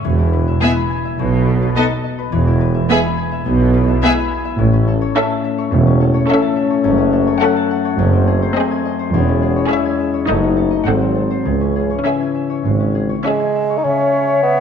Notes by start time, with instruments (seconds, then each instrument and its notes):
Already playing: harp G#3 G#4 E5 G#5
0.04 double bass section E1, tuba E1, cello section E2, harp E3
0.19 harp E4
0.33 harp B4
0.48 harp E5
0.61 french horn section G#3 E4, viola section B3, violin section G#4 E5, harp G#5
0.77 harp B5
0.90 harp G#5
1.05 harp E5
1.19 tuba B1, double bass section B1, cello section B2, harp B2
1.34 harp B3
1.48 harp A4
1.62 harp B4
1.75 french horn section A3 D#4, viola section B3, violin section A4 D#5, harp D#5
1.90 harp A5
2.04 harp D#5
2.19 harp B4
2.32 tuba E1, double bass section E1, cello section E2, harp E3
2.47 harp E4
2.61 harp B4
2.74 harp E5
2.89 french horn section G#3 E4, viola section B3, violin section G#4 E5, harp G#5
3.04 harp B5
3.17 harp G#5
3.32 harp E5
3.46 tuba B1, double bass section B1, cello section B2, harp B3
3.60 harp E4
3.74 harp B4
3.88 harp E5
4.02 french horn section G#3 E4, viola section B3, violin section G#4 E5, harp G#5
4.16 harp B5
4.31 harp G#5
4.45 harp E5
4.59 tuba A1, double bass section A1, harp A2, cello section A2, french horn section A3 C#4
4.73 harp C#4
4.88 harp A4
5.02 harp C#5
5.15 viola section C#4, violin section A4 E5, harp E5
5.30 harp A5
5.44 harp E5
5.58 harp C#5
5.72 tuba E1, double bass section E1, cello section E2, harp E3
5.87 harp C#4
6.01 harp A4
6.14 harp C#5
6.28 viola section C#4, violin section A4 E5, harp E5
6.42 harp A5
6.56 harp E5
6.70 harp C#5
6.84 tuba F#1, double bass section F#1, harp F#2, cello section F#2
6.98 harp C#4
7.13 harp A4
7.27 harp C#5
7.41 viola section C#4, violin section A4 F#5, harp F#5
7.56 harp A5
7.71 harp F#5
7.85 harp C#5
7.98 tuba F#1, double bass section F#1, cello section F#2, harp F#2, french horn section C4
8.13 harp C4
8.27 harp G#4
8.42 harp C5
8.55 viola section C4, violin section G#4 D#5, harp D#5
8.71 harp G#5
8.85 harp D#5
8.99 harp C5
9.13 tuba E1, double bass section E1, cello section E2, harp E2, french horn section G#3 C#4
9.28 harp C#4
9.42 harp G#4
9.56 harp C#5
9.70 viola section C#4, violin section G#4 E5, harp E5
9.85 harp G#5
9.99 harp E5
10.14 harp C#5
10.27 double bass section F#1, tuba F#1, harp F#2, cello section F#2, french horn section A3 D#4, viola section D#4, violin section A4 D#5
10.42 harp D#4
10.57 harp A4
10.71 harp D#5
10.85 tuba G#1, double bass section G#1, harp G#2, cello section G#2, french horn section F#3 C4, viola section C4, violin section A4 F#5
11.01 harp C4
11.15 harp A4
11.31 harp C5
11.45 tuba C#2, double bass section C#2, harp C#3, cello section C#3, french horn section E3 C#4
11.61 harp C#4
11.76 harp G#4
11.90 harp C#5
12.05 viola section C#4, violin section G#4 E5, harp E5
12.20 harp G#5
12.35 harp E5
12.50 harp C#5
12.65 double bass section G#1, tuba G#1, cello section G#2, harp G#3
12.80 harp C#4
12.95 harp G#4
13.09 harp C#5
13.24 bassoon G#3, viola section C#4, violin section G#4 E5, harp E5
13.40 harp G#5
13.55 harp E5
13.70 harp C#5
13.78 bassoon D#4
13.84 harp C#3, french horn section C#3, bassoon C#4, clarinet C#5, flute E5
13.99 harp C#4
14.13 harp G#4
14.27 harp C#5
14.43 bassoon B3, harp E5
14.57 harp G#5